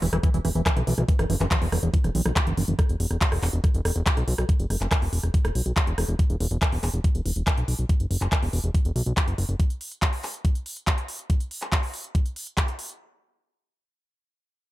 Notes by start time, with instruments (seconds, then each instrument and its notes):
0.02 analog synth bass E1, acid bass E3, open hi-hat
0.13 analog synth bass E1, acid bass E3, cross-stick, closed hi-hat
0.23 acid bass E3, kick, closed hi-hat
0.34 analog synth bass E1, acid bass E3, closed hi-hat
0.45 analog synth bass E1, acid bass E3, cross-stick, open hi-hat
0.55 analog synth bass E1, acid bass E3, closed hi-hat
0.66 acid bass E3, kick, cross-stick, clap, closed hi-hat
0.77 analog synth bass B1, acid bass E3, closed hi-hat
0.87 analog synth bass B1, acid bass E3, open hi-hat
0.98 analog synth bass B1, acid bass E3, cross-stick, closed hi-hat
1.08 acid bass E3, kick, closed hi-hat
1.19 analog synth bass F#1, acid bass E3, cross-stick, closed hi-hat
1.30 analog synth bass F#1, acid bass E3, open hi-hat
1.40 analog synth bass F#1, acid bass E3, clap, closed hi-hat
1.51 acid bass E3, kick, cross-stick, clap, closed hi-hat
1.62 analog synth bass E1, acid bass E3, open hi-hat
1.72 analog synth bass E1, acid bass E3, cross-stick, open hi-hat
1.83 analog synth bass E1, acid bass E3, closed hi-hat
1.94 acid bass E3, kick, closed hi-hat
2.04 analog synth bass E1, acid bass E3, cross-stick, closed hi-hat
2.15 analog synth bass B1, acid bass E3, open hi-hat
2.26 analog synth bass B1, acid bass E3, cross-stick, closed hi-hat
2.36 acid bass E3, kick, clap, closed hi-hat
2.47 analog synth bass F#1, acid bass E3, closed hi-hat
2.57 analog synth bass F#1, acid bass E3, open hi-hat
2.68 analog synth bass F#1, acid bass E3, closed hi-hat
2.79 kick, cross-stick, closed hi-hat
2.89 analog synth bass E1, closed hi-hat
3.00 analog synth bass E1, open hi-hat
3.11 analog synth bass E1, cross-stick, closed hi-hat
3.21 kick, clap, closed hi-hat
3.32 analog synth bass E1, cross-stick, open hi-hat
3.43 analog synth bass E1, clap, open hi-hat
3.53 analog synth bass E1, closed hi-hat
3.64 kick, cross-stick, closed hi-hat
3.74 analog synth bass E1, closed hi-hat
3.85 analog synth bass E1, cross-stick, open hi-hat
3.96 analog synth bass E1, closed hi-hat
4.06 kick, clap, closed hi-hat
4.17 analog synth bass B1, cross-stick, closed hi-hat
4.28 analog synth bass B1, open hi-hat
4.38 analog synth bass B1, cross-stick, closed hi-hat
4.49 kick, closed hi-hat
4.60 analog synth bass F#1, closed hi-hat
4.70 analog synth bass F#1, cross-stick, open hi-hat
4.81 analog synth bass F#1, clap, closed hi-hat
4.91 kick, cross-stick, clap, closed hi-hat
5.02 analog synth bass E1, open hi-hat
5.13 analog synth bass E1, open hi-hat
5.23 analog synth bass E1, cross-stick, closed hi-hat
5.34 kick, closed hi-hat
5.45 analog synth bass E1, cross-stick, closed hi-hat
5.55 analog synth bass B1, open hi-hat
5.66 analog synth bass B1, closed hi-hat
5.77 kick, cross-stick, clap, closed hi-hat
5.87 analog synth bass E1, closed hi-hat
5.98 analog synth bass E1, cross-stick, open hi-hat
6.09 analog synth bass E1, closed hi-hat
6.19 kick, closed hi-hat
6.30 analog synth bass E1, closed hi-hat
6.40 analog synth bass E1, open hi-hat
6.51 analog synth bass E1, closed hi-hat
6.62 kick, clap, closed hi-hat
6.72 analog synth bass E1, open hi-hat
6.83 analog synth bass E1, clap, open hi-hat
6.94 analog synth bass E1, closed hi-hat
7.04 kick, closed hi-hat
7.15 analog synth bass E1, closed hi-hat
7.26 analog synth bass E1, open hi-hat
7.36 analog synth bass E1, closed hi-hat
7.47 kick, clap, closed hi-hat
7.57 analog synth bass B1, closed hi-hat
7.68 analog synth bass B1, open hi-hat
7.79 analog synth bass B1, closed hi-hat
7.89 kick, closed hi-hat
8.00 analog synth bass F#1, closed hi-hat
8.11 analog synth bass F#1, open hi-hat
8.21 analog synth bass F#1, clap, closed hi-hat
8.32 kick, clap, closed hi-hat
8.43 analog synth bass E1, open hi-hat
8.53 analog synth bass E1, open hi-hat
8.64 analog synth bass E1, closed hi-hat
8.74 kick, closed hi-hat
8.85 analog synth bass E1, closed hi-hat
8.96 analog synth bass B1, open hi-hat
9.06 analog synth bass B1, closed hi-hat
9.17 kick, clap, closed hi-hat
9.28 analog synth bass F#1, closed hi-hat
9.38 analog synth bass F#1, open hi-hat
9.49 analog synth bass F#1, closed hi-hat
9.60 kick, closed hi-hat
9.70 closed hi-hat
9.81 open hi-hat
9.92 closed hi-hat
10.02 kick, clap, closed hi-hat
10.13 open hi-hat
10.23 clap, open hi-hat
10.34 closed hi-hat
10.45 kick, closed hi-hat
10.55 closed hi-hat
10.66 open hi-hat
10.77 closed hi-hat
10.87 kick, clap, closed hi-hat
10.98 closed hi-hat
11.08 open hi-hat
11.19 closed hi-hat
11.30 kick, closed hi-hat
11.40 closed hi-hat
11.51 open hi-hat
11.62 clap, closed hi-hat
11.72 kick, clap, closed hi-hat
11.83 open hi-hat
11.94 open hi-hat
12.04 closed hi-hat
12.15 kick, closed hi-hat
12.26 closed hi-hat
12.36 open hi-hat
12.47 closed hi-hat
12.57 kick, clap, closed hi-hat
12.68 closed hi-hat
12.79 open hi-hat
12.89 closed hi-hat